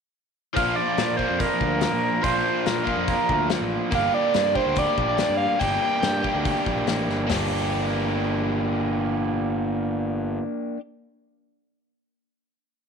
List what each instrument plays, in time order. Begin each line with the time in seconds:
0.53 picked electric bass A#1, overdriven electric guitar F3 A#3 D4 F4, analog synth lead F5, kick, open hi-hat
0.76 analog synth lead D5
0.98 picked electric bass A#2, snare, open hi-hat
1.17 overdriven electric guitar A#3 D4 F4, analog synth lead C5, kick
1.21 overdriven electric guitar F3
1.30 picked electric bass F2
1.40 analog synth lead A#4, kick, open hi-hat
1.61 picked electric bass D2, kick
1.81 analog synth lead A#4, snare, open hi-hat
1.93 picked electric bass A#2
2.22 picked electric bass A#1, overdriven electric guitar F3 A#3 D4 F4, analog synth lead C5, kick, open hi-hat
2.66 picked electric bass A#2, analog synth lead A#4, snare, open hi-hat
2.84 overdriven electric guitar F3 A#3 D4 F4, kick
2.97 picked electric bass F2
3.08 analog synth lead A#4, kick, open hi-hat
3.29 picked electric bass D2, kick
3.50 snare, open hi-hat
3.61 picked electric bass A1
3.91 picked electric bass G1, overdriven electric guitar A#3 D4 G4, analog synth lead F5, kick, open hi-hat
4.14 analog synth lead D5
4.34 picked electric bass G2, snare, open hi-hat
4.55 overdriven electric guitar A#3 D4 G4, analog synth lead C5, kick
4.67 picked electric bass D2
4.76 analog synth lead D5, kick, open hi-hat
4.97 picked electric bass A#1, kick
5.08 analog synth lead D5
5.18 snare, open hi-hat
5.29 picked electric bass G2
5.37 analog synth lead F5
5.59 picked electric bass G1, overdriven electric guitar A#3 D4 G4, analog synth lead G5, kick, open hi-hat
6.03 picked electric bass G2, snare, open hi-hat
6.23 overdriven electric guitar A#3 D4 G4, kick
6.35 picked electric bass D2
6.45 kick, open hi-hat
6.66 picked electric bass A#1, kick
6.87 picked electric bass A1, snare, open hi-hat
7.08 picked electric bass G1, snare
7.27 picked electric bass G1, overdriven electric guitar A#3 D4 G4, snare, floor tom, open hi-hat